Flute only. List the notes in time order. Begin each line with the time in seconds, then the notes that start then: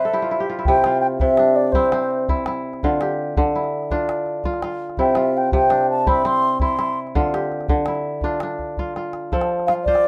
Already playing: E5
0.66 G5
1.01 G5
1.20 E5
1.56 D5
1.72 C5
5.00 G5
5.17 E5
5.37 G5
5.54 G5
5.91 A5
6.09 B5
6.27 C6
6.62 C6
9.67 F5
9.84 D5